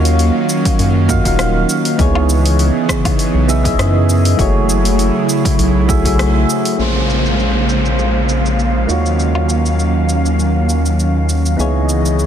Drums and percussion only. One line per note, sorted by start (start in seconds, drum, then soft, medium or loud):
0.05 open hi-hat medium
0.05 shaker soft
0.19 open hi-hat soft
0.19 shaker soft
0.49 shaker medium
0.65 kick medium
0.65 open hi-hat medium
0.65 shaker soft
0.79 open hi-hat soft
0.79 shaker soft
1.09 kick loud
1.09 shaker medium
1.25 kick medium
1.25 open hi-hat medium
1.25 shaker soft
1.39 cross-stick medium
1.39 open hi-hat soft
1.39 shaker soft
1.70 shaker medium
1.85 open hi-hat medium
1.85 shaker soft
1.99 kick loud
1.99 open hi-hat soft
1.99 shaker soft
2.15 low woodblock medium
2.30 shaker medium
2.46 open hi-hat medium
2.46 shaker soft
2.59 open hi-hat soft
2.59 shaker soft
2.89 kick medium
2.89 cross-stick medium
2.89 shaker medium
3.05 kick loud
3.05 open hi-hat medium
3.05 low woodblock medium
3.05 shaker soft
3.19 open hi-hat soft
3.19 shaker soft
3.49 shaker medium
3.65 kick loud
3.65 open hi-hat medium
3.65 shaker soft
3.79 cross-stick medium
3.79 open hi-hat soft
3.79 shaker soft
4.10 shaker medium
4.25 open hi-hat medium
4.25 shaker soft
4.39 kick loud
4.39 open hi-hat soft
4.39 shaker soft
4.70 shaker medium
4.85 open hi-hat medium
4.85 shaker soft
4.99 open hi-hat soft
4.99 shaker soft
5.29 shaker medium
5.45 kick loud
5.45 open hi-hat medium
5.45 shaker soft
5.59 open hi-hat medium
5.59 shaker soft
5.89 kick loud
5.89 shaker medium
6.05 kick medium
6.05 open hi-hat medium
6.05 shaker soft
6.19 cross-stick medium
6.19 open hi-hat soft
6.19 shaker soft
6.50 shaker medium
6.65 open hi-hat medium
6.65 shaker soft
6.80 shaker soft
7.10 shaker medium
7.26 shaker soft
7.40 shaker soft
7.69 shaker medium
7.86 shaker soft
7.99 shaker soft
8.29 shaker medium
8.46 shaker soft
8.59 shaker soft
8.89 shaker medium
9.06 shaker soft
9.19 shaker soft
9.35 low woodblock soft
9.49 shaker medium
9.66 shaker soft
9.79 shaker soft
10.09 shaker medium
10.26 shaker soft
10.39 shaker soft
10.69 shaker medium
10.86 shaker soft
11.00 shaker soft
11.29 shaker medium
11.46 shaker soft
11.60 shaker soft
11.89 shaker medium
12.06 shaker soft
12.19 shaker soft